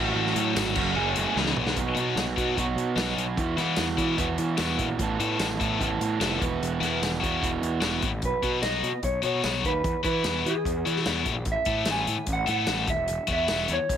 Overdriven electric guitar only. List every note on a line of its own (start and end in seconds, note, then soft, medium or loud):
0.00 0.15 A2 medium
0.00 0.35 F#3 medium
0.00 0.95 F#4 medium
0.16 0.76 A2 medium
0.36 0.55 F#3 medium
0.56 0.76 F#3 medium
0.76 1.36 F#2 medium
0.96 1.36 G#4 medium
1.17 1.37 A3 medium
1.37 1.77 E2 medium
1.57 1.77 B3 medium
1.77 2.55 B2 medium
1.77 2.57 F#3 medium
1.77 2.58 B3 medium
1.77 2.57 D#4 medium
1.77 2.60 F#4 medium
2.56 3.36 B2 medium
2.56 3.37 F#3 medium
2.56 3.39 B3 medium
2.56 3.38 D#4 medium
2.60 3.38 F#4 medium
3.36 4.16 E2 medium
3.36 4.17 B2 medium
3.36 4.19 E3 medium
3.36 4.20 B3 medium
3.36 4.20 E4 medium
3.36 4.19 F#4 medium
4.17 4.98 E2 medium
4.17 4.98 B2 medium
4.17 4.99 E3 medium
4.17 5.00 B3 medium
4.17 5.01 E4 medium
4.17 4.99 F#4 medium
4.99 5.79 A2 medium
4.99 5.82 E3 medium
4.99 5.80 A3 medium
4.99 5.83 B3 medium
4.99 5.81 A4 medium
5.81 6.40 A2 medium
5.81 6.41 E3 medium
5.81 6.41 A3 medium
5.81 6.44 B3 medium
5.81 6.42 A4 medium
6.42 7.21 E2 medium
6.42 7.21 B2 medium
6.42 7.22 E3 medium
6.42 7.22 B3 medium
6.42 7.21 E4 medium
6.42 7.21 F#4 medium
7.22 8.03 E2 medium
7.22 8.03 B2 medium
7.22 8.03 E3 medium
7.22 8.02 B3 medium
7.22 8.02 E4 medium
7.22 8.01 F#4 medium